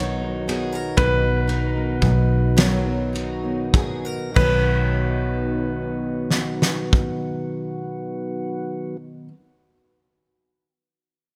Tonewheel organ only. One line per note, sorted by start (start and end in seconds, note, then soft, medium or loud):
0.00 4.31 D#3 medium
0.00 4.31 F#3 medium
0.00 4.31 B3 medium
0.00 4.31 F#4 medium
4.36 8.97 D#3 medium
4.36 8.97 F#3 medium
4.36 8.97 B3 medium
4.36 8.97 F#4 medium